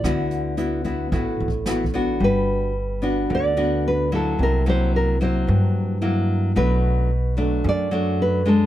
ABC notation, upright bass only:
X:1
M:4/4
L:1/8
Q:1/4=111
K:D
V:1 name="Upright bass" clef=bass
D,,4 A,,, A,,,3 | [K:G] G,,,4 D,,4 | C,,4 G,,4 | B,,,4 F,,4 |]